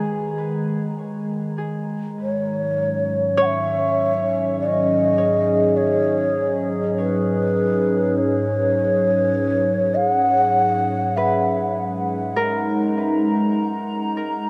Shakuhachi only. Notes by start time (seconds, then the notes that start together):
2.22 C#5
3.42 E5 F#5
4.60 D#5
5.77 C#5
6.99 B4
8.18 C#5
9.95 F#5
11.16 E5